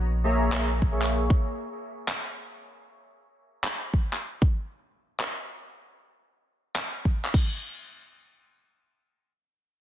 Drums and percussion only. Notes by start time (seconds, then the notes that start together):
0.52 clap
0.82 kick
1.02 clap
1.30 kick
2.08 clap
3.64 clap
3.94 kick
4.13 clap
4.42 kick
5.20 clap
6.76 clap
7.05 kick
7.25 clap
7.34 kick, crash